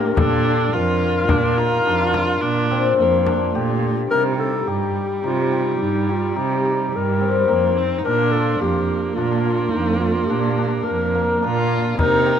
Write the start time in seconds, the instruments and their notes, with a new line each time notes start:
Already playing: viola A#3, hammered dulcimer C4 D4 F4 G4, clarinet A#4
0.16 cello A#2, hammered dulcimer D4, viola D4, clarinet A4, frame drum
0.45 hammered dulcimer D4, frame drum
0.73 cello F2, viola F4, hammered dulcimer F4, clarinet A#4, frame drum
1.29 cello A#2, viola D4, hammered dulcimer F4, frame drum
1.58 hammered dulcimer D#4, viola F4, frame drum
1.85 cello F2, hammered dulcimer D4
2.14 hammered dulcimer F4, frame drum
2.41 cello A#2, viola D4
2.71 hammered dulcimer C4, frame drum
2.98 cello F2, viola A#3
3.27 hammered dulcimer D4, frame drum
3.53 cello A#2, viola A3, hammered dulcimer G4
3.83 frame drum
4.11 cello C3, viola G3, hammered dulcimer D#4, clarinet A#4
4.38 hammered dulcimer G4, clarinet A4
4.67 cello G2, hammered dulcimer G4, clarinet G4
5.24 cello C3, hammered dulcimer D#4, clarinet F4
5.52 hammered dulcimer G4
5.80 cello G2, clarinet D#4
6.09 clarinet F4, hammered dulcimer G4
6.36 cello C3, hammered dulcimer D#4, clarinet G4
6.65 hammered dulcimer D#4
6.93 cello G2, clarinet A#4
7.21 hammered dulcimer C4
7.48 cello F2, viola A#3, hammered dulcimer D#4
7.78 viola C4
7.99 viola D#4
8.03 cello A#2, hammered dulcimer D4, viola D4, clarinet A#4
8.31 hammered dulcimer F4, clarinet A4
8.61 cello F2, viola A#3, hammered dulcimer F4, clarinet G4
9.15 cello A#2, hammered dulcimer D4, clarinet F4
9.45 hammered dulcimer F4
9.71 cello F2, clarinet D#4
9.99 clarinet F4, hammered dulcimer F4
10.26 cello A#2, hammered dulcimer D4, clarinet G4
10.58 hammered dulcimer D4
10.84 cello F2, clarinet A#4
11.15 hammered dulcimer A#3
11.42 cello A#2, hammered dulcimer D4, viola F4
11.98 cello C3, hammered dulcimer D#4, viola D#4, clarinet A#4, frame drum
12.26 hammered dulcimer G4